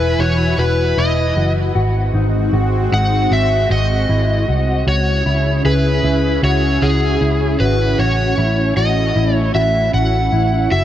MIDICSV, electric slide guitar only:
0, 0, Header, 1, 2, 480
1, 0, Start_track
1, 0, Tempo, 779221
1, 1080, Time_signature, 4, 2, 24, 8
1, 6679, End_track
2, 0, Start_track
2, 0, Title_t, "Electric slide guitar"
2, 0, Program_c, 0, 29
2, 0, Note_on_c, 0, 71, 97
2, 123, Note_on_c, 0, 73, 93
2, 128, Note_off_c, 0, 71, 0
2, 363, Note_on_c, 0, 71, 89
2, 369, Note_off_c, 0, 73, 0
2, 605, Note_on_c, 0, 75, 86
2, 609, Note_off_c, 0, 71, 0
2, 938, Note_off_c, 0, 75, 0
2, 1809, Note_on_c, 0, 78, 103
2, 2050, Note_on_c, 0, 76, 102
2, 2052, Note_off_c, 0, 78, 0
2, 2287, Note_off_c, 0, 76, 0
2, 2290, Note_on_c, 0, 75, 97
2, 3006, Note_off_c, 0, 75, 0
2, 3008, Note_on_c, 0, 73, 94
2, 3481, Note_off_c, 0, 73, 0
2, 3483, Note_on_c, 0, 71, 85
2, 3966, Note_off_c, 0, 71, 0
2, 3968, Note_on_c, 0, 73, 89
2, 4203, Note_on_c, 0, 68, 85
2, 4212, Note_off_c, 0, 73, 0
2, 4682, Note_on_c, 0, 71, 84
2, 4696, Note_off_c, 0, 68, 0
2, 4924, Note_on_c, 0, 73, 91
2, 4928, Note_off_c, 0, 71, 0
2, 5398, Note_off_c, 0, 73, 0
2, 5401, Note_on_c, 0, 75, 84
2, 5764, Note_off_c, 0, 75, 0
2, 5764, Note_on_c, 0, 73, 84
2, 5878, Note_off_c, 0, 73, 0
2, 5881, Note_on_c, 0, 76, 91
2, 6104, Note_off_c, 0, 76, 0
2, 6123, Note_on_c, 0, 78, 90
2, 6601, Note_on_c, 0, 76, 85
2, 6616, Note_off_c, 0, 78, 0
2, 6679, Note_off_c, 0, 76, 0
2, 6679, End_track
0, 0, End_of_file